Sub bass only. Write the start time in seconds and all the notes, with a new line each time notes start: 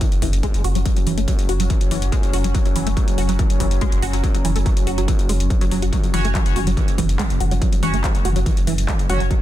0.12 F#1
0.22 F#1
0.33 F#1
0.54 F#1
0.64 F#1
0.75 F#1
0.96 F#1
1.07 F#1
1.18 F#1
1.39 F#1
1.49 F#1
1.60 F#1
1.81 F#1
1.91 F#1
2.02 F#1
2.23 F#1
2.33 F#1
2.44 F#1
2.65 F#1
2.76 F#1
2.87 F#1
3.08 F#1
3.18 F#1
3.29 F#1
3.50 F#1
3.60 F#1
3.71 F#1
3.92 F#1
4.02 F#1
4.13 F#1
4.34 F#1
4.45 F#1
4.56 F#1
4.77 F#1
4.87 F#1
4.98 F#1
5.19 F#1
5.29 F#1
5.40 F#1
5.61 F#1
5.71 F#1
5.82 F#1
6.03 F#1
6.14 F#1
6.25 F#1
6.46 F#1
6.56 F#1
6.67 F#1
6.88 F#1
6.98 F#1
7.09 F#1
7.30 F#1
7.40 F#1
7.51 F#1
7.73 F#1
7.83 F#1
7.94 F#1
8.15 F#1
8.25 F#1
8.36 F#1
8.57 F#1
8.67 F#1
8.78 F#1
8.99 F#1
9.09 F#1
9.20 F#1